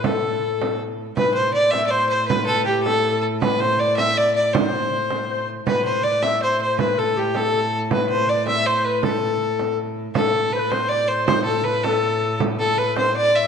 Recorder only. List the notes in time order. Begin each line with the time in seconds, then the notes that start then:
0.05 A4
1.18 B4
1.37 C5
1.55 D5
1.74 E5
1.92 C5
2.30 B4
2.67 G4
2.86 A4
3.10 A4
3.43 B4
3.62 C5
3.80 D5
4.00 E5
4.18 D5
4.35 D5
4.54 C5
5.29 C5
5.66 B4
6.04 D5
6.23 E5
6.41 C5
6.80 B4
6.97 A4
7.16 G4
7.36 A4
7.92 B4
8.28 D5
8.48 E5
8.67 C5
8.84 B4
9.03 A4
10.16 A4
10.54 C5
10.58 B4
10.73 C5
10.91 D5
11.11 C5
11.29 C5
11.48 A4
11.67 B4
11.85 A4
12.59 A4
12.78 B4
12.95 C5
13.14 D5
13.35 E5